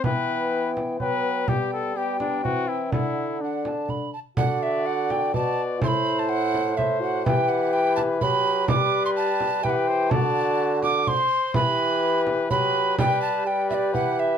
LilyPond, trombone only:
\new Staff \with { instrumentName = "Trombone" } { \time 3/4 \key d \mixolydian \tempo 4 = 125 b2 b4 | b4 b4 c'4 | d'4 d'4. r8 | fis'2 fis'4 |
e'2 e'8 fis'8 | g'2 g'4 | g'2 g'4 | fis'2~ fis'8 r8 |
g'2 g'4 | g'4 g'2 | }